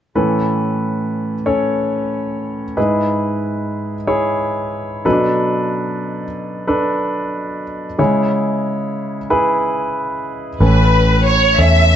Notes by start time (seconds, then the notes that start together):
0.15 A2 E3 C#4 A4 B4
1.46 C#4 A4 C#5
2.77 G#2 G#3 E4 G#4 B4
4.07 E4 G#4 C#5
5.05 B2 F#3 C#4 A4 B4
5.12 D4
6.67 D4 A4 B4
7.98 C#3 G#3 E4 G#4 C#5
9.30 E4 G#4 B4
10.60 A1 A2 E3 C#4 A4 B4
11.27 C#5
11.58 E2 C#4 A4 C#5 E5